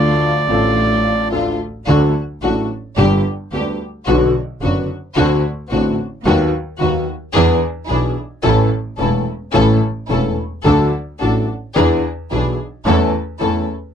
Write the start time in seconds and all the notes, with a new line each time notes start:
Already playing: D2 D3 F3 A3 D4 F4 A4 D5
0.47 A1 A2 F3 A3 D4 F4 A4
1.31 D2 D3 F3 A3 D4 F4 A4
1.87 D2 D3 F#3 A3 D4 F#4 A4
2.42 A1 A2 F#3 A3 D4 F#4 A4
2.97 G1 G2 D3 G3 B3 D4 G4
3.52 D2 D3 G3 B3 D4 G4
4.07 B1 B2 D3 F#3 B3 D4 F#4
4.62 F#1 F#2 D3 F#3 B3 D4 F#4
5.17 D2 D3 A3 C4 D4 F#4
5.71 A1 A2 D3 A3 C4 D4 F#4
6.25 D#2 D#3 F#3 B3 D#4 F#4
6.80 D#2 D#3 F#3 B3 D#4 F#4
7.34 E2 E3 B3 D4 E4 G#4
7.89 B1 B2 E3 B3 D4 E4 G#4
8.43 A1 A2 E3 A3 C#4 E4 A4
8.98 E1 E2 E3 A3 C#4 E4 A4
9.53 A1 A2 E3 A3 C#4 E4 A4
10.09 E1 E2 E3 A3 C#4 E4 A4
10.64 D2 D3 F#3 A3 D4 F#4 A4
11.21 A1 A2 F#3 A3 D4 F#4 A4
11.76 E2 E3 B3 D4 E4 G#4
12.31 B1 B2 E3 B3 D4 E4 G#4
12.86 E2 E3 A3 C#4 E4 A4
13.41 E2 E3 A3 C#4 E4 A4